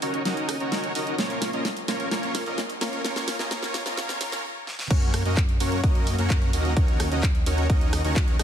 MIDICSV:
0, 0, Header, 1, 4, 480
1, 0, Start_track
1, 0, Key_signature, -6, "minor"
1, 0, Tempo, 465116
1, 1223, Time_signature, 4, 2, 24, 8
1, 8701, End_track
2, 0, Start_track
2, 0, Title_t, "Supersaw synth"
2, 0, Program_c, 0, 81
2, 22, Note_on_c, 0, 61, 87
2, 22, Note_on_c, 0, 63, 78
2, 22, Note_on_c, 0, 66, 78
2, 22, Note_on_c, 0, 70, 78
2, 22, Note_on_c, 0, 73, 92
2, 233, Note_off_c, 0, 61, 0
2, 233, Note_off_c, 0, 63, 0
2, 233, Note_off_c, 0, 66, 0
2, 233, Note_off_c, 0, 70, 0
2, 233, Note_off_c, 0, 73, 0
2, 262, Note_on_c, 0, 61, 92
2, 262, Note_on_c, 0, 63, 86
2, 262, Note_on_c, 0, 66, 81
2, 262, Note_on_c, 0, 70, 83
2, 262, Note_on_c, 0, 75, 101
2, 593, Note_off_c, 0, 61, 0
2, 593, Note_off_c, 0, 63, 0
2, 593, Note_off_c, 0, 66, 0
2, 593, Note_off_c, 0, 70, 0
2, 593, Note_off_c, 0, 75, 0
2, 622, Note_on_c, 0, 61, 94
2, 622, Note_on_c, 0, 63, 84
2, 622, Note_on_c, 0, 66, 82
2, 622, Note_on_c, 0, 70, 83
2, 622, Note_on_c, 0, 73, 104
2, 953, Note_off_c, 0, 61, 0
2, 953, Note_off_c, 0, 63, 0
2, 953, Note_off_c, 0, 66, 0
2, 953, Note_off_c, 0, 70, 0
2, 953, Note_off_c, 0, 73, 0
2, 982, Note_on_c, 0, 61, 83
2, 982, Note_on_c, 0, 63, 80
2, 982, Note_on_c, 0, 66, 77
2, 982, Note_on_c, 0, 70, 82
2, 982, Note_on_c, 0, 75, 98
2, 1193, Note_off_c, 0, 61, 0
2, 1193, Note_off_c, 0, 63, 0
2, 1193, Note_off_c, 0, 66, 0
2, 1193, Note_off_c, 0, 70, 0
2, 1193, Note_off_c, 0, 75, 0
2, 1222, Note_on_c, 0, 58, 94
2, 1222, Note_on_c, 0, 61, 82
2, 1222, Note_on_c, 0, 65, 84
2, 1222, Note_on_c, 0, 70, 86
2, 1222, Note_on_c, 0, 73, 101
2, 1553, Note_off_c, 0, 58, 0
2, 1553, Note_off_c, 0, 61, 0
2, 1553, Note_off_c, 0, 65, 0
2, 1553, Note_off_c, 0, 70, 0
2, 1553, Note_off_c, 0, 73, 0
2, 1582, Note_on_c, 0, 58, 76
2, 1582, Note_on_c, 0, 61, 67
2, 1582, Note_on_c, 0, 65, 67
2, 1582, Note_on_c, 0, 70, 68
2, 1582, Note_on_c, 0, 75, 82
2, 1735, Note_off_c, 0, 58, 0
2, 1735, Note_off_c, 0, 61, 0
2, 1735, Note_off_c, 0, 65, 0
2, 1735, Note_off_c, 0, 70, 0
2, 1735, Note_off_c, 0, 75, 0
2, 1942, Note_on_c, 0, 58, 81
2, 1942, Note_on_c, 0, 61, 73
2, 1942, Note_on_c, 0, 65, 76
2, 1942, Note_on_c, 0, 70, 73
2, 1942, Note_on_c, 0, 73, 91
2, 2153, Note_off_c, 0, 58, 0
2, 2153, Note_off_c, 0, 61, 0
2, 2153, Note_off_c, 0, 65, 0
2, 2153, Note_off_c, 0, 70, 0
2, 2153, Note_off_c, 0, 73, 0
2, 2182, Note_on_c, 0, 58, 94
2, 2182, Note_on_c, 0, 61, 87
2, 2182, Note_on_c, 0, 65, 86
2, 2182, Note_on_c, 0, 70, 82
2, 2182, Note_on_c, 0, 73, 101
2, 2513, Note_off_c, 0, 61, 0
2, 2514, Note_off_c, 0, 58, 0
2, 2514, Note_off_c, 0, 65, 0
2, 2514, Note_off_c, 0, 70, 0
2, 2514, Note_off_c, 0, 73, 0
2, 2542, Note_on_c, 0, 58, 78
2, 2542, Note_on_c, 0, 61, 72
2, 2542, Note_on_c, 0, 65, 73
2, 2542, Note_on_c, 0, 70, 74
2, 2542, Note_on_c, 0, 75, 87
2, 2695, Note_off_c, 0, 58, 0
2, 2695, Note_off_c, 0, 61, 0
2, 2695, Note_off_c, 0, 65, 0
2, 2695, Note_off_c, 0, 70, 0
2, 2695, Note_off_c, 0, 75, 0
2, 2902, Note_on_c, 0, 58, 82
2, 2902, Note_on_c, 0, 61, 75
2, 2902, Note_on_c, 0, 65, 75
2, 2902, Note_on_c, 0, 70, 73
2, 2902, Note_on_c, 0, 73, 90
2, 3113, Note_off_c, 0, 61, 0
2, 3113, Note_off_c, 0, 70, 0
2, 3114, Note_off_c, 0, 58, 0
2, 3114, Note_off_c, 0, 65, 0
2, 3114, Note_off_c, 0, 73, 0
2, 3142, Note_on_c, 0, 58, 99
2, 3142, Note_on_c, 0, 61, 90
2, 3142, Note_on_c, 0, 65, 93
2, 3142, Note_on_c, 0, 70, 90
2, 3142, Note_on_c, 0, 73, 114
2, 3474, Note_off_c, 0, 58, 0
2, 3474, Note_off_c, 0, 61, 0
2, 3474, Note_off_c, 0, 65, 0
2, 3474, Note_off_c, 0, 70, 0
2, 3474, Note_off_c, 0, 73, 0
2, 3502, Note_on_c, 0, 58, 81
2, 3502, Note_on_c, 0, 61, 72
2, 3502, Note_on_c, 0, 65, 73
2, 3502, Note_on_c, 0, 70, 72
2, 3502, Note_on_c, 0, 75, 89
2, 3603, Note_off_c, 0, 58, 0
2, 3603, Note_off_c, 0, 61, 0
2, 3603, Note_off_c, 0, 65, 0
2, 3603, Note_off_c, 0, 70, 0
2, 3603, Note_off_c, 0, 75, 0
2, 3622, Note_on_c, 0, 58, 99
2, 3622, Note_on_c, 0, 61, 90
2, 3622, Note_on_c, 0, 65, 93
2, 3622, Note_on_c, 0, 70, 88
2, 3622, Note_on_c, 0, 73, 111
2, 3953, Note_off_c, 0, 65, 0
2, 3954, Note_off_c, 0, 58, 0
2, 3954, Note_off_c, 0, 61, 0
2, 3954, Note_off_c, 0, 70, 0
2, 3954, Note_off_c, 0, 73, 0
2, 3982, Note_on_c, 0, 58, 80
2, 3982, Note_on_c, 0, 61, 72
2, 3982, Note_on_c, 0, 65, 73
2, 3982, Note_on_c, 0, 70, 71
2, 3982, Note_on_c, 0, 75, 90
2, 4083, Note_off_c, 0, 58, 0
2, 4083, Note_off_c, 0, 61, 0
2, 4083, Note_off_c, 0, 65, 0
2, 4083, Note_off_c, 0, 70, 0
2, 4083, Note_off_c, 0, 75, 0
2, 4102, Note_on_c, 0, 58, 101
2, 4102, Note_on_c, 0, 61, 94
2, 4102, Note_on_c, 0, 65, 92
2, 4102, Note_on_c, 0, 70, 92
2, 4103, Note_on_c, 0, 73, 114
2, 4323, Note_off_c, 0, 58, 0
2, 4323, Note_off_c, 0, 61, 0
2, 4323, Note_off_c, 0, 65, 0
2, 4323, Note_off_c, 0, 70, 0
2, 4323, Note_off_c, 0, 73, 0
2, 4342, Note_on_c, 0, 58, 102
2, 4342, Note_on_c, 0, 61, 93
2, 4342, Note_on_c, 0, 65, 92
2, 4342, Note_on_c, 0, 70, 92
2, 4342, Note_on_c, 0, 73, 111
2, 4563, Note_off_c, 0, 58, 0
2, 4563, Note_off_c, 0, 61, 0
2, 4563, Note_off_c, 0, 65, 0
2, 4563, Note_off_c, 0, 70, 0
2, 4563, Note_off_c, 0, 73, 0
2, 5062, Note_on_c, 0, 58, 100
2, 5062, Note_on_c, 0, 61, 93
2, 5062, Note_on_c, 0, 66, 96
2, 5062, Note_on_c, 0, 70, 94
2, 5062, Note_on_c, 0, 73, 113
2, 5394, Note_off_c, 0, 58, 0
2, 5394, Note_off_c, 0, 61, 0
2, 5394, Note_off_c, 0, 66, 0
2, 5394, Note_off_c, 0, 70, 0
2, 5394, Note_off_c, 0, 73, 0
2, 5422, Note_on_c, 0, 58, 82
2, 5422, Note_on_c, 0, 61, 76
2, 5422, Note_on_c, 0, 66, 77
2, 5422, Note_on_c, 0, 70, 75
2, 5422, Note_on_c, 0, 75, 89
2, 5575, Note_off_c, 0, 58, 0
2, 5575, Note_off_c, 0, 61, 0
2, 5575, Note_off_c, 0, 66, 0
2, 5575, Note_off_c, 0, 70, 0
2, 5575, Note_off_c, 0, 75, 0
2, 5782, Note_on_c, 0, 58, 89
2, 5782, Note_on_c, 0, 61, 81
2, 5782, Note_on_c, 0, 66, 80
2, 5782, Note_on_c, 0, 70, 82
2, 5782, Note_on_c, 0, 73, 98
2, 5994, Note_off_c, 0, 58, 0
2, 5994, Note_off_c, 0, 61, 0
2, 5994, Note_off_c, 0, 66, 0
2, 5994, Note_off_c, 0, 70, 0
2, 5994, Note_off_c, 0, 73, 0
2, 6022, Note_on_c, 0, 58, 91
2, 6022, Note_on_c, 0, 61, 87
2, 6022, Note_on_c, 0, 70, 89
2, 6353, Note_off_c, 0, 58, 0
2, 6353, Note_off_c, 0, 61, 0
2, 6353, Note_off_c, 0, 70, 0
2, 6382, Note_on_c, 0, 58, 92
2, 6382, Note_on_c, 0, 61, 86
2, 6382, Note_on_c, 0, 66, 89
2, 6382, Note_on_c, 0, 70, 86
2, 6382, Note_on_c, 0, 73, 105
2, 6713, Note_off_c, 0, 58, 0
2, 6713, Note_off_c, 0, 61, 0
2, 6713, Note_off_c, 0, 66, 0
2, 6713, Note_off_c, 0, 70, 0
2, 6713, Note_off_c, 0, 73, 0
2, 6742, Note_on_c, 0, 58, 85
2, 6742, Note_on_c, 0, 61, 81
2, 6742, Note_on_c, 0, 66, 82
2, 6742, Note_on_c, 0, 70, 83
2, 6742, Note_on_c, 0, 75, 98
2, 6953, Note_off_c, 0, 58, 0
2, 6953, Note_off_c, 0, 61, 0
2, 6953, Note_off_c, 0, 66, 0
2, 6953, Note_off_c, 0, 70, 0
2, 6953, Note_off_c, 0, 75, 0
2, 6982, Note_on_c, 0, 70, 91
2, 7313, Note_off_c, 0, 70, 0
2, 7342, Note_on_c, 0, 61, 84
2, 7342, Note_on_c, 0, 63, 75
2, 7342, Note_on_c, 0, 66, 77
2, 7342, Note_on_c, 0, 70, 72
2, 7342, Note_on_c, 0, 75, 93
2, 7495, Note_off_c, 0, 61, 0
2, 7495, Note_off_c, 0, 63, 0
2, 7495, Note_off_c, 0, 66, 0
2, 7495, Note_off_c, 0, 70, 0
2, 7495, Note_off_c, 0, 75, 0
2, 7702, Note_on_c, 0, 61, 86
2, 7702, Note_on_c, 0, 63, 81
2, 7702, Note_on_c, 0, 66, 80
2, 7702, Note_on_c, 0, 70, 80
2, 7702, Note_on_c, 0, 73, 97
2, 7914, Note_off_c, 0, 61, 0
2, 7914, Note_off_c, 0, 63, 0
2, 7914, Note_off_c, 0, 66, 0
2, 7914, Note_off_c, 0, 70, 0
2, 7914, Note_off_c, 0, 73, 0
2, 8302, Note_on_c, 0, 61, 93
2, 8302, Note_on_c, 0, 63, 85
2, 8302, Note_on_c, 0, 66, 85
2, 8302, Note_on_c, 0, 70, 85
2, 8302, Note_on_c, 0, 73, 102
2, 8634, Note_off_c, 0, 61, 0
2, 8634, Note_off_c, 0, 63, 0
2, 8634, Note_off_c, 0, 66, 0
2, 8634, Note_off_c, 0, 70, 0
2, 8634, Note_off_c, 0, 73, 0
2, 8663, Note_on_c, 0, 61, 88
2, 8663, Note_on_c, 0, 63, 80
2, 8663, Note_on_c, 0, 66, 83
2, 8663, Note_on_c, 0, 70, 84
2, 8663, Note_on_c, 0, 75, 96
2, 8701, Note_off_c, 0, 61, 0
2, 8701, Note_off_c, 0, 63, 0
2, 8701, Note_off_c, 0, 66, 0
2, 8701, Note_off_c, 0, 70, 0
2, 8701, Note_off_c, 0, 75, 0
2, 8701, End_track
3, 0, Start_track
3, 0, Title_t, "Detuned saw bass"
3, 0, Program_c, 1, 39
3, 22, Note_on_c, 1, 39, 95
3, 238, Note_off_c, 1, 39, 0
3, 262, Note_on_c, 1, 39, 93
3, 598, Note_off_c, 1, 39, 0
3, 622, Note_on_c, 1, 39, 94
3, 959, Note_off_c, 1, 39, 0
3, 982, Note_on_c, 1, 39, 95
3, 1198, Note_off_c, 1, 39, 0
3, 1222, Note_on_c, 1, 34, 92
3, 1558, Note_off_c, 1, 34, 0
3, 1583, Note_on_c, 1, 34, 93
3, 1919, Note_off_c, 1, 34, 0
3, 1943, Note_on_c, 1, 34, 94
3, 2159, Note_off_c, 1, 34, 0
3, 2182, Note_on_c, 1, 34, 94
3, 2518, Note_off_c, 1, 34, 0
3, 2542, Note_on_c, 1, 34, 99
3, 2878, Note_off_c, 1, 34, 0
3, 2902, Note_on_c, 1, 34, 95
3, 3118, Note_off_c, 1, 34, 0
3, 3143, Note_on_c, 1, 37, 98
3, 3479, Note_off_c, 1, 37, 0
3, 3503, Note_on_c, 1, 37, 94
3, 3599, Note_off_c, 1, 37, 0
3, 3623, Note_on_c, 1, 37, 98
3, 3959, Note_off_c, 1, 37, 0
3, 3983, Note_on_c, 1, 37, 96
3, 4079, Note_off_c, 1, 37, 0
3, 4103, Note_on_c, 1, 37, 97
3, 4319, Note_off_c, 1, 37, 0
3, 4343, Note_on_c, 1, 37, 97
3, 4559, Note_off_c, 1, 37, 0
3, 5063, Note_on_c, 1, 42, 95
3, 5399, Note_off_c, 1, 42, 0
3, 5423, Note_on_c, 1, 42, 94
3, 5759, Note_off_c, 1, 42, 0
3, 5783, Note_on_c, 1, 42, 96
3, 5999, Note_off_c, 1, 42, 0
3, 6023, Note_on_c, 1, 42, 98
3, 6359, Note_off_c, 1, 42, 0
3, 6383, Note_on_c, 1, 42, 102
3, 6719, Note_off_c, 1, 42, 0
3, 6743, Note_on_c, 1, 39, 102
3, 6959, Note_off_c, 1, 39, 0
3, 6982, Note_on_c, 1, 39, 98
3, 7319, Note_off_c, 1, 39, 0
3, 7343, Note_on_c, 1, 39, 97
3, 7679, Note_off_c, 1, 39, 0
3, 7703, Note_on_c, 1, 39, 98
3, 7919, Note_off_c, 1, 39, 0
3, 7943, Note_on_c, 1, 39, 98
3, 8279, Note_off_c, 1, 39, 0
3, 8303, Note_on_c, 1, 39, 100
3, 8639, Note_off_c, 1, 39, 0
3, 8663, Note_on_c, 1, 39, 95
3, 8701, Note_off_c, 1, 39, 0
3, 8701, End_track
4, 0, Start_track
4, 0, Title_t, "Drums"
4, 22, Note_on_c, 9, 46, 92
4, 125, Note_off_c, 9, 46, 0
4, 142, Note_on_c, 9, 42, 39
4, 245, Note_off_c, 9, 42, 0
4, 262, Note_on_c, 9, 38, 63
4, 262, Note_on_c, 9, 42, 67
4, 365, Note_off_c, 9, 38, 0
4, 365, Note_off_c, 9, 42, 0
4, 383, Note_on_c, 9, 42, 40
4, 486, Note_off_c, 9, 42, 0
4, 502, Note_on_c, 9, 37, 73
4, 502, Note_on_c, 9, 46, 105
4, 606, Note_off_c, 9, 37, 0
4, 606, Note_off_c, 9, 46, 0
4, 623, Note_on_c, 9, 42, 38
4, 726, Note_off_c, 9, 42, 0
4, 743, Note_on_c, 9, 38, 71
4, 743, Note_on_c, 9, 42, 67
4, 846, Note_off_c, 9, 38, 0
4, 846, Note_off_c, 9, 42, 0
4, 863, Note_on_c, 9, 42, 40
4, 966, Note_off_c, 9, 42, 0
4, 983, Note_on_c, 9, 46, 92
4, 1086, Note_off_c, 9, 46, 0
4, 1103, Note_on_c, 9, 42, 41
4, 1206, Note_off_c, 9, 42, 0
4, 1223, Note_on_c, 9, 38, 72
4, 1223, Note_on_c, 9, 42, 62
4, 1326, Note_off_c, 9, 38, 0
4, 1326, Note_off_c, 9, 42, 0
4, 1343, Note_on_c, 9, 42, 37
4, 1446, Note_off_c, 9, 42, 0
4, 1462, Note_on_c, 9, 38, 73
4, 1462, Note_on_c, 9, 46, 103
4, 1566, Note_off_c, 9, 38, 0
4, 1566, Note_off_c, 9, 46, 0
4, 1583, Note_on_c, 9, 42, 37
4, 1686, Note_off_c, 9, 42, 0
4, 1702, Note_on_c, 9, 38, 77
4, 1702, Note_on_c, 9, 42, 62
4, 1806, Note_off_c, 9, 38, 0
4, 1806, Note_off_c, 9, 42, 0
4, 1822, Note_on_c, 9, 42, 35
4, 1926, Note_off_c, 9, 42, 0
4, 1942, Note_on_c, 9, 38, 79
4, 1942, Note_on_c, 9, 46, 93
4, 2045, Note_off_c, 9, 38, 0
4, 2045, Note_off_c, 9, 46, 0
4, 2062, Note_on_c, 9, 42, 38
4, 2166, Note_off_c, 9, 42, 0
4, 2182, Note_on_c, 9, 38, 84
4, 2182, Note_on_c, 9, 42, 63
4, 2285, Note_off_c, 9, 38, 0
4, 2285, Note_off_c, 9, 42, 0
4, 2302, Note_on_c, 9, 42, 40
4, 2405, Note_off_c, 9, 42, 0
4, 2422, Note_on_c, 9, 38, 81
4, 2422, Note_on_c, 9, 46, 105
4, 2525, Note_off_c, 9, 38, 0
4, 2525, Note_off_c, 9, 46, 0
4, 2542, Note_on_c, 9, 42, 39
4, 2645, Note_off_c, 9, 42, 0
4, 2662, Note_on_c, 9, 38, 89
4, 2662, Note_on_c, 9, 42, 64
4, 2765, Note_off_c, 9, 38, 0
4, 2765, Note_off_c, 9, 42, 0
4, 2782, Note_on_c, 9, 42, 38
4, 2885, Note_off_c, 9, 42, 0
4, 2902, Note_on_c, 9, 38, 89
4, 2902, Note_on_c, 9, 46, 95
4, 3005, Note_off_c, 9, 38, 0
4, 3005, Note_off_c, 9, 46, 0
4, 3023, Note_on_c, 9, 42, 39
4, 3126, Note_off_c, 9, 42, 0
4, 3142, Note_on_c, 9, 38, 93
4, 3142, Note_on_c, 9, 42, 64
4, 3245, Note_off_c, 9, 38, 0
4, 3245, Note_off_c, 9, 42, 0
4, 3262, Note_on_c, 9, 38, 83
4, 3262, Note_on_c, 9, 42, 37
4, 3365, Note_off_c, 9, 38, 0
4, 3365, Note_off_c, 9, 42, 0
4, 3382, Note_on_c, 9, 38, 92
4, 3382, Note_on_c, 9, 46, 104
4, 3485, Note_off_c, 9, 38, 0
4, 3485, Note_off_c, 9, 46, 0
4, 3502, Note_on_c, 9, 38, 83
4, 3502, Note_on_c, 9, 42, 37
4, 3605, Note_off_c, 9, 38, 0
4, 3605, Note_off_c, 9, 42, 0
4, 3622, Note_on_c, 9, 38, 93
4, 3622, Note_on_c, 9, 42, 63
4, 3725, Note_off_c, 9, 38, 0
4, 3725, Note_off_c, 9, 42, 0
4, 3742, Note_on_c, 9, 38, 81
4, 3742, Note_on_c, 9, 42, 37
4, 3845, Note_off_c, 9, 38, 0
4, 3845, Note_off_c, 9, 42, 0
4, 3862, Note_on_c, 9, 38, 100
4, 3862, Note_on_c, 9, 46, 96
4, 3965, Note_off_c, 9, 38, 0
4, 3965, Note_off_c, 9, 46, 0
4, 3982, Note_on_c, 9, 38, 86
4, 3982, Note_on_c, 9, 42, 38
4, 4085, Note_off_c, 9, 38, 0
4, 4085, Note_off_c, 9, 42, 0
4, 4102, Note_on_c, 9, 38, 103
4, 4102, Note_on_c, 9, 42, 66
4, 4205, Note_off_c, 9, 38, 0
4, 4205, Note_off_c, 9, 42, 0
4, 4222, Note_on_c, 9, 38, 90
4, 4222, Note_on_c, 9, 42, 39
4, 4325, Note_off_c, 9, 38, 0
4, 4325, Note_off_c, 9, 42, 0
4, 4342, Note_on_c, 9, 38, 99
4, 4342, Note_on_c, 9, 46, 107
4, 4445, Note_off_c, 9, 38, 0
4, 4445, Note_off_c, 9, 46, 0
4, 4462, Note_on_c, 9, 38, 94
4, 4565, Note_off_c, 9, 38, 0
4, 4822, Note_on_c, 9, 38, 60
4, 4926, Note_off_c, 9, 38, 0
4, 4942, Note_on_c, 9, 38, 76
4, 5046, Note_off_c, 9, 38, 0
4, 5062, Note_on_c, 9, 36, 118
4, 5062, Note_on_c, 9, 42, 71
4, 5062, Note_on_c, 9, 49, 100
4, 5165, Note_off_c, 9, 42, 0
4, 5165, Note_off_c, 9, 49, 0
4, 5166, Note_off_c, 9, 36, 0
4, 5183, Note_on_c, 9, 42, 40
4, 5286, Note_off_c, 9, 42, 0
4, 5303, Note_on_c, 9, 37, 78
4, 5303, Note_on_c, 9, 46, 104
4, 5406, Note_off_c, 9, 37, 0
4, 5406, Note_off_c, 9, 46, 0
4, 5423, Note_on_c, 9, 42, 40
4, 5526, Note_off_c, 9, 42, 0
4, 5542, Note_on_c, 9, 36, 122
4, 5543, Note_on_c, 9, 42, 67
4, 5544, Note_on_c, 9, 39, 121
4, 5646, Note_off_c, 9, 36, 0
4, 5646, Note_off_c, 9, 42, 0
4, 5647, Note_off_c, 9, 39, 0
4, 5663, Note_on_c, 9, 42, 40
4, 5766, Note_off_c, 9, 42, 0
4, 5783, Note_on_c, 9, 46, 96
4, 5886, Note_off_c, 9, 46, 0
4, 5903, Note_on_c, 9, 42, 42
4, 6006, Note_off_c, 9, 42, 0
4, 6023, Note_on_c, 9, 36, 120
4, 6023, Note_on_c, 9, 42, 70
4, 6126, Note_off_c, 9, 36, 0
4, 6126, Note_off_c, 9, 42, 0
4, 6143, Note_on_c, 9, 42, 41
4, 6246, Note_off_c, 9, 42, 0
4, 6263, Note_on_c, 9, 46, 103
4, 6366, Note_off_c, 9, 46, 0
4, 6383, Note_on_c, 9, 42, 42
4, 6486, Note_off_c, 9, 42, 0
4, 6503, Note_on_c, 9, 36, 116
4, 6503, Note_on_c, 9, 42, 70
4, 6504, Note_on_c, 9, 39, 127
4, 6606, Note_off_c, 9, 36, 0
4, 6606, Note_off_c, 9, 42, 0
4, 6607, Note_off_c, 9, 39, 0
4, 6623, Note_on_c, 9, 42, 43
4, 6726, Note_off_c, 9, 42, 0
4, 6742, Note_on_c, 9, 46, 96
4, 6846, Note_off_c, 9, 46, 0
4, 6863, Note_on_c, 9, 42, 41
4, 6966, Note_off_c, 9, 42, 0
4, 6983, Note_on_c, 9, 36, 127
4, 6983, Note_on_c, 9, 42, 66
4, 7086, Note_off_c, 9, 36, 0
4, 7086, Note_off_c, 9, 42, 0
4, 7103, Note_on_c, 9, 42, 39
4, 7206, Note_off_c, 9, 42, 0
4, 7223, Note_on_c, 9, 37, 79
4, 7223, Note_on_c, 9, 46, 104
4, 7326, Note_off_c, 9, 37, 0
4, 7326, Note_off_c, 9, 46, 0
4, 7343, Note_on_c, 9, 42, 41
4, 7447, Note_off_c, 9, 42, 0
4, 7463, Note_on_c, 9, 36, 121
4, 7463, Note_on_c, 9, 42, 69
4, 7464, Note_on_c, 9, 39, 125
4, 7566, Note_off_c, 9, 36, 0
4, 7566, Note_off_c, 9, 42, 0
4, 7567, Note_off_c, 9, 39, 0
4, 7583, Note_on_c, 9, 42, 38
4, 7686, Note_off_c, 9, 42, 0
4, 7703, Note_on_c, 9, 46, 96
4, 7806, Note_off_c, 9, 46, 0
4, 7823, Note_on_c, 9, 42, 39
4, 7926, Note_off_c, 9, 42, 0
4, 7943, Note_on_c, 9, 36, 118
4, 7943, Note_on_c, 9, 42, 68
4, 8046, Note_off_c, 9, 36, 0
4, 8046, Note_off_c, 9, 42, 0
4, 8063, Note_on_c, 9, 42, 41
4, 8166, Note_off_c, 9, 42, 0
4, 8183, Note_on_c, 9, 37, 77
4, 8183, Note_on_c, 9, 46, 105
4, 8286, Note_off_c, 9, 37, 0
4, 8286, Note_off_c, 9, 46, 0
4, 8303, Note_on_c, 9, 42, 42
4, 8406, Note_off_c, 9, 42, 0
4, 8423, Note_on_c, 9, 36, 124
4, 8423, Note_on_c, 9, 42, 68
4, 8424, Note_on_c, 9, 39, 124
4, 8526, Note_off_c, 9, 36, 0
4, 8526, Note_off_c, 9, 42, 0
4, 8527, Note_off_c, 9, 39, 0
4, 8543, Note_on_c, 9, 42, 41
4, 8646, Note_off_c, 9, 42, 0
4, 8663, Note_on_c, 9, 37, 83
4, 8663, Note_on_c, 9, 46, 94
4, 8701, Note_off_c, 9, 37, 0
4, 8701, Note_off_c, 9, 46, 0
4, 8701, End_track
0, 0, End_of_file